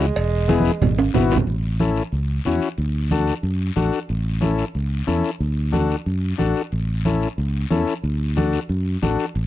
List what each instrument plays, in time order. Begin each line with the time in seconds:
0.00 tenor saxophone G#3, short guiro
0.16 fingered electric bass E1, cowbell, high conga, long guiro
0.48 transistor combo organ B3 E4 G#4, high conga, short guiro
0.60 high conga
0.65 short guiro
0.82 fingered electric bass G#1, cowbell, low conga, long guiro
0.99 high timbale
1.14 fingered electric bass G#1, transistor combo organ B3 E4 F#4, low conga, short guiro
1.31 low timbale, short guiro
1.36 low conga
1.47 fingered electric bass A1, high conga, long guiro
1.80 transistor combo organ C#4 E4 A4, high conga, short guiro
1.96 short guiro
2.12 fingered electric bass C#2, high conga, long guiro
2.45 fingered electric bass E2, transistor combo organ C#4 E4 F#4, high conga, short guiro
2.62 short guiro
2.78 fingered electric bass D2, high conga, long guiro
3.11 transistor combo organ D4 F#4 A4, high conga, short guiro
3.27 short guiro
3.43 fingered electric bass F#2, high conga, long guiro
3.76 fingered electric bass A1, transistor combo organ D4 F#4 A4, high conga, short guiro
3.93 short guiro
4.09 fingered electric bass A1, high conga, long guiro
4.41 transistor combo organ C#4 E4 A4, high conga, short guiro
4.58 short guiro
4.75 fingered electric bass C#2, high conga, long guiro
5.07 fingered electric bass E2, transistor combo organ C#4 E4 A4, high conga, short guiro
5.24 short guiro
5.40 fingered electric bass D2, high conga, long guiro
5.72 transistor combo organ D4 F#4 A4, high conga, short guiro
5.90 short guiro
6.06 fingered electric bass F#2, high conga, long guiro
6.38 fingered electric bass A1, transistor combo organ D4 F#4 A4, high conga, short guiro
6.56 short guiro
6.72 fingered electric bass A1, high conga, long guiro
7.05 transistor combo organ C#4 E4 A4, high conga, short guiro
7.22 short guiro
7.38 fingered electric bass C#2, high conga, long guiro
7.70 fingered electric bass E2, transistor combo organ C#4 E4 A4, high conga, short guiro
7.87 short guiro
8.03 fingered electric bass D2, high conga, long guiro
8.36 transistor combo organ D4 F#4 A4, high conga, short guiro
8.53 short guiro
8.69 fingered electric bass F#2, high conga, long guiro
9.02 fingered electric bass A1, transistor combo organ D4 F#4 A4, high conga, short guiro
9.19 short guiro
9.35 fingered electric bass A1, high conga, long guiro